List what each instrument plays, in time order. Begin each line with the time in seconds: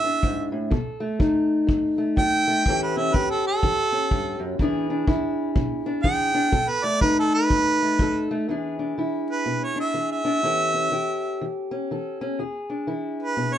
Already playing: steel-string acoustic guitar B2 E4 G#4, harmonica E5
0.04 steel-string acoustic guitar D4
0.22 steel-string acoustic guitar G#2, kick
0.52 steel-string acoustic guitar A2
0.70 steel-string acoustic guitar B2 A4, kick
1.00 steel-string acoustic guitar A3
1.19 steel-string acoustic guitar F#3 D#4, kick
1.67 steel-string acoustic guitar F#2, kick
1.98 steel-string acoustic guitar A3
2.17 steel-string acoustic guitar F#3 A4, harmonica G5, kick
2.48 steel-string acoustic guitar A3
2.66 steel-string acoustic guitar A2 E3 C#4 G4, kick
2.70 steel-string acoustic guitar A4
2.83 harmonica B4
2.97 steel-string acoustic guitar C#4, harmonica E5
3.14 steel-string acoustic guitar E3 G4, harmonica B4, kick
3.31 harmonica A4
3.47 harmonica A4
3.63 steel-string acoustic guitar E3, kick
3.92 steel-string acoustic guitar C#4
4.11 steel-string acoustic guitar G2, kick
4.40 steel-string acoustic guitar F#2
4.59 steel-string acoustic guitar E2 E3 D4 E4 G#4, kick
4.90 steel-string acoustic guitar D4
5.07 steel-string acoustic guitar E3 E4, kick
5.55 steel-string acoustic guitar B2, kick
5.86 steel-string acoustic guitar D4
6.03 steel-string acoustic guitar E3 G#4, harmonica G5, kick
6.34 steel-string acoustic guitar D4
6.52 steel-string acoustic guitar B2 A4, kick
6.69 harmonica B4
6.84 steel-string acoustic guitar A3, harmonica D5
7.01 steel-string acoustic guitar F#3 D#4, harmonica B4, kick
7.19 harmonica A4
7.35 harmonica B4
7.50 steel-string acoustic guitar F#2, kick
7.82 steel-string acoustic guitar A3
7.99 steel-string acoustic guitar F#3 A4, kick
8.31 steel-string acoustic guitar A3
8.48 steel-string acoustic guitar E2 E3 D4 E4 G#4
8.79 steel-string acoustic guitar D4
8.98 steel-string acoustic guitar E3 E4
9.31 harmonica B4
9.46 steel-string acoustic guitar B2
9.64 harmonica C#5
9.76 steel-string acoustic guitar D4
9.80 harmonica E5
9.94 steel-string acoustic guitar E3 G#4
10.12 harmonica E5
10.25 steel-string acoustic guitar D4
10.43 steel-string acoustic guitar A2 E3 C#4 G4 A4
10.74 steel-string acoustic guitar C#4
10.92 steel-string acoustic guitar E3 G4
11.41 steel-string acoustic guitar E3
11.71 steel-string acoustic guitar C#4
11.91 steel-string acoustic guitar E3 A4
12.21 steel-string acoustic guitar C#4
12.39 steel-string acoustic guitar E2 G#4
12.70 steel-string acoustic guitar D4
12.87 steel-string acoustic guitar E3 E4
13.23 harmonica B4
13.37 steel-string acoustic guitar B2
13.54 harmonica C#5